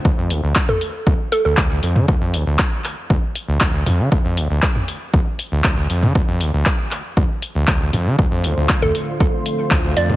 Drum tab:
HH |--o---o---o---o-|--o---o---o---o-|--o---o---o---o-|--o---o---o---o-|
CP |----x-------x---|----x-x-----x---|----x-------x---|----x-x-----x---|
T2 |-----o---------o|--------------o-|-----o---------o|--------------o-|
BD |o---o---o---o---|o---o---o---o---|o---o---o---o---|o---o---o---o---|

HH |--o---o---o---o-|
CP |----x-------x---|
T2 |-----o---------o|
BD |o---o---o---o---|